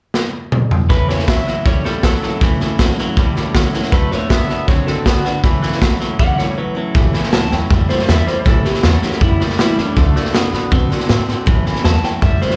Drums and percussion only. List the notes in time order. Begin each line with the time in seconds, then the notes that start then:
0.14 snare
0.52 mid tom
0.71 floor tom
0.90 kick, snare
1.09 snare
1.19 snare
1.28 kick, snare, hi-hat pedal
1.47 snare
1.66 kick, snare
1.85 snare
2.03 kick, snare, hi-hat pedal
2.23 snare
2.41 kick, snare
2.60 snare
2.79 kick, snare, hi-hat pedal
2.98 snare
3.17 kick, snare
3.36 snare
3.55 kick, snare, hi-hat pedal
3.74 snare
3.83 snare
3.92 kick, snare
4.12 snare
4.30 kick, snare, hi-hat pedal
4.49 snare
4.68 kick, snare
4.87 snare
5.06 kick, snare, hi-hat pedal
5.25 snare
5.44 kick, snare
5.63 snare
5.72 snare
5.82 kick, snare, hi-hat pedal
6.00 snare
6.19 kick, snare
6.38 snare
6.95 kick, snare
7.14 snare
7.23 snare
7.33 snare, hi-hat pedal
7.52 snare
7.71 kick, snare
7.89 snare
7.99 snare
8.09 snare, hi-hat pedal
8.27 snare
8.46 kick, snare
8.65 snare
8.74 snare
8.83 snare, hi-hat pedal
9.02 snare
9.12 snare
9.21 kick, snare
9.40 snare
9.50 snare
9.59 snare, hi-hat pedal
9.78 snare
9.97 kick, snare
10.16 snare
10.25 snare
10.35 snare, hi-hat pedal
10.54 snare
10.72 kick, snare
10.91 snare
11.00 snare
11.09 snare, hi-hat pedal
11.29 snare
11.47 kick, snare
11.66 snare
11.75 snare
11.84 snare, hi-hat pedal
12.04 snare
12.22 kick, snare
12.41 snare
12.50 snare